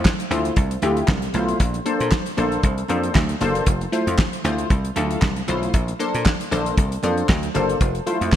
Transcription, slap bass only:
0.31 D2
0.57 C2
0.82 D2
1.08 C2
1.34 B1
1.60 A#1
2.01 A#2
2.38 A#1
2.64 C2
2.90 F2
3.15 D2
3.41 F#1
3.67 F1
4.07 F2
4.44 D2
4.70 C2
4.97 D2
5.22 C2
5.49 B1
5.74 A#1
6.15 A#2
6.52 A#1
6.77 C2
7.03 F2
7.29 D2
7.55 F#1
7.81 F1
8.21 F2

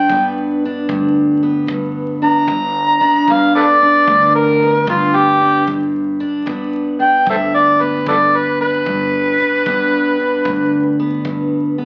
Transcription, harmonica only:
Already playing: G5
2.25 A#5
3.32 F5
3.56 A4 B4 D5
4.35 A#4
4.90 F4
5.16 G4
7.01 G5
7.30 A4 C5 E5
7.55 D5
7.82 B4
8.08 A4 B4 D5
8.36 B4
8.61 B4

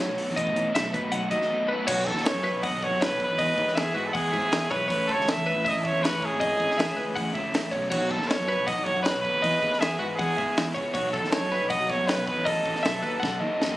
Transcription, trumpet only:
1.87 F#4
2.06 A4
2.24 C#5
2.62 D#5
2.83 C#5
3.02 B4
3.24 B4
3.78 G#4
3.95 F#4
4.06 A4
4.13 G#4
4.71 B4
4.90 B4
5.12 C#5
5.30 E5
5.68 D#5
5.78 D#5
5.84 C#5
6.03 B4
6.25 G#4
7.90 F#4
8.11 A4
8.28 C#5
8.67 D#5
8.84 C#5
9.02 B4
9.21 B4
9.80 G#4
9.99 F#4
10.16 G#4
10.93 F#4
11.12 A4
11.31 C#5
11.69 D#5
11.90 C#5
12.07 B4
12.28 B4
12.46 A4

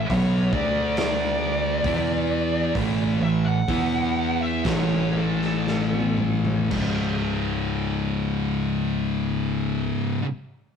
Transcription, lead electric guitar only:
0.13 C#5
0.54 D5
0.98 D5
3.22 E5
3.46 F#5
4.41 E5
4.69 C#5
5.18 A4

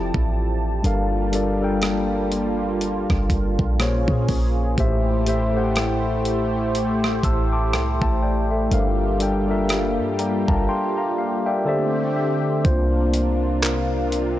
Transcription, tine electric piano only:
0.83 G3 D4 A4 A#4 F5
1.32 G3 D4 A4 A#4 D5
1.61 G3 D4 A4 A#4 G5
3.78 A#2 A#3 G#4 C5 C#5
4.77 A2 A3 G4 C5 E5
5.26 A2 A3 G4 C5 E5
5.54 A2 A3 G4 C5 F#5
5.64 G5
7.24 A5 E6
7.53 A5 D6
7.73 G5 C6
8.02 E5 A5
8.22 D5 G5
8.51 A4 E5
8.70 G3 D4 A4 A#4 F5
9.19 G3 D4 A4 A#4 G5
9.48 G3 D4 A4 A#4 E5
10.19 D5 G5 A#5
10.48 F5 A5 A#5
10.69 G5 C6
10.98 F5 A#5
11.18 F5
11.46 D5 E5 G5
11.65 D3 D4 G4 A4 C5 D5 E5
12.16 E5
12.64 A#3 D4 F4 C5
13.63 A#4

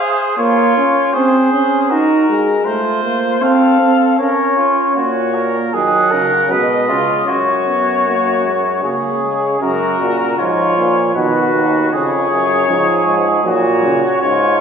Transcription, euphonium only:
4.97 A#2
5.75 D#3
6.13 C#3
6.51 B2
6.90 C#3
7.27 F#2
8.83 C#3
9.61 F#2
10.00 A#2
10.38 G#2
10.77 A#2
11.15 B2
11.54 D#2
11.92 F2
12.31 F#2
12.69 G#2
13.06 G#2
13.44 A#2
14.22 G#2

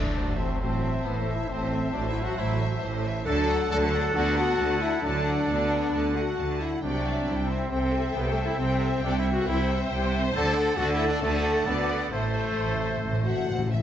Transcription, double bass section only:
Already playing: A1
0.17 A1
0.61 A1
1.05 A1
1.48 A1
1.94 A1
2.37 A1
2.81 A1
3.26 D2
3.71 D2
4.15 D2
4.58 D2
5.04 D2
5.49 D2
5.94 D2
6.38 D2
6.83 C2
7.28 C2
7.70 C2
8.14 C2
8.59 C2
9.03 C2
9.46 C2
9.90 C2
10.36 D2
10.79 D2
11.22 D2
11.68 D2
12.13 A1
12.59 A1
13.04 A1
13.49 A1

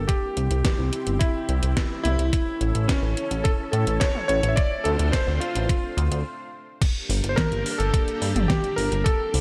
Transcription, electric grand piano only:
0.08 G4
1.19 E4
2.03 E4
2.88 C#4
3.44 A4
3.72 A4
4.00 C#5
4.28 C#5
4.49 E5
4.56 D5
4.84 A4
5.12 C5
5.40 F4
7.29 C5
7.36 A#4
7.71 A#4
7.78 A4
8.48 G4
8.76 A#4
9.04 A4

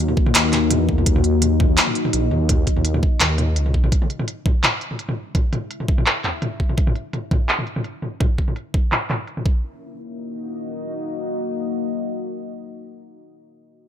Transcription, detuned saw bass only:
Already playing: D#2
0.35 D#2
0.71 E2
1.07 D#2
2.13 A#1
2.32 D#2
2.77 D#2
3.21 D#2
3.56 C#2
3.74 A#1

